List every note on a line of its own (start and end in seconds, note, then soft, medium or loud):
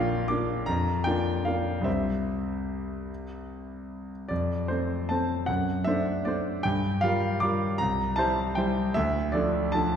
0.00 0.70 A#1 medium
0.00 0.26 A#3 soft
0.00 0.26 D4 soft
0.00 0.26 F4 medium
0.00 0.29 F5 medium
0.00 0.70 G5 medium
0.28 0.64 A#3 soft
0.28 0.65 D4 soft
0.28 0.65 F4 soft
0.28 0.67 D6 medium
0.66 1.05 F2 medium
0.66 1.05 A#5 medium
1.04 1.42 A#3 soft
1.04 1.42 D4 soft
1.04 1.42 F4 soft
1.04 1.45 G5 medium
1.45 1.82 A#3 soft
1.45 1.83 D4 soft
1.45 1.83 F4 soft
1.45 1.85 F5 medium
1.81 4.24 C2 soft
1.81 4.25 G3 soft
1.81 4.25 C4 soft
1.81 4.10 E5 medium
1.85 4.26 C5 soft
4.28 4.69 F2 soft
4.28 4.69 D5 medium
4.68 5.06 A3 soft
4.68 5.06 C4 soft
4.68 5.09 C5 medium
5.09 5.45 A3 soft
5.09 5.45 C4 soft
5.09 5.45 C5 soft
5.09 5.48 A5 medium
5.46 5.85 F#2 soft
5.46 5.85 F#5 medium
5.84 6.22 A3 soft
5.84 6.22 D4 soft
5.84 6.23 C5 soft
5.84 6.25 E5 medium
6.25 6.61 A3 soft
6.25 6.61 D4 soft
6.25 6.62 C5 soft
6.25 6.64 D5 medium
6.63 7.02 G2 medium
6.63 7.02 G5 medium
7.01 7.38 G3 medium
7.01 7.39 F4 soft
7.01 7.39 A#4 medium
7.01 7.41 F5 medium
7.40 7.77 G3 soft
7.40 7.77 F4 soft
7.40 7.77 A#4 medium
7.40 7.79 D6 medium
7.78 8.17 C2 medium
7.78 8.17 A#5 medium
8.16 8.53 G3 medium
8.16 8.54 E4 medium
8.16 8.54 C5 medium
8.16 8.56 A5 medium
8.55 8.92 G3 soft
8.55 8.92 E4 soft
8.55 8.93 C5 soft
8.55 8.95 G5 medium
8.94 9.33 D2 medium
8.94 9.33 E5 medium
9.32 9.69 F3 soft
9.32 9.70 D4 soft
9.32 9.70 A4 medium
9.32 9.72 D5 medium
9.72 9.96 F3 soft
9.72 9.96 D4 soft
9.72 9.96 A4 soft
9.72 9.96 A5 medium